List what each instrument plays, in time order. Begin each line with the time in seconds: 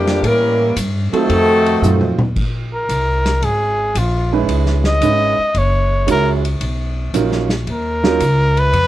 Already playing: upright bass F2, trombone section A#2 D3 G3, saxophone section F3 A#3 D4 G4
0.07 snare, ride
0.22 upright bass A2, trombone section E3 G3 A#3, kick, ride
0.27 saxophone section G3 C#4 E4 A#4
0.76 upright bass G2, kick, hi-hat pedal, ride
1.11 trombone section C3 D#3 A3, grand piano F#3 C4 D#4 F4 A4, saxophone section C4 D#4 F#4 A4, muted upright bass stroke, ride
1.29 upright bass F2, kick, ride
1.66 ride
1.82 upright bass F#2, grand piano F#3 C4 D#4 F4 C5, hi-hat pedal, mid tom
2.00 upright bass F2, mid tom
2.17 upright bass D#2, mid tom
2.36 upright bass A#1, kick, crash
2.74 trumpet A#4
2.89 upright bass C2, kick, hi-hat pedal, ride
3.26 snare, ride
3.42 upright bass G#1, trumpet G#4, kick, ride
3.95 upright bass A#1, trumpet F4, kick, hi-hat pedal, ride
4.32 grand piano G#3 C#4 D#4 E4 B4
4.48 upright bass C#2, kick, ride
4.66 snare
4.84 trumpet D#5, snare
5.01 upright bass G#1, grand piano G#3 C#4 D#4 E4 B4, kick, hi-hat pedal, ride
5.38 muted upright bass stroke
5.54 upright bass F#1, trumpet C#5, kick, ride
6.07 upright bass C#2, grand piano G#3 C#4 E4 F#4 C#5, kick, hi-hat pedal, ride
6.11 trumpet A#4
6.45 ride
6.60 upright bass B1, kick, ride
7.14 upright bass A#1, grand piano F#3 C#4 D#4 F4 A#4, kick, hi-hat pedal, ride
7.32 snare
7.49 snare, ride
7.67 upright bass D#2, kick, ride
7.72 trumpet A#4
8.04 grand piano F#3 C#4 D#4 F4 A#4, snare
8.20 upright bass C#2, kick, hi-hat pedal, ride
8.57 trumpet B4, ride
8.73 upright bass F2, kick, ride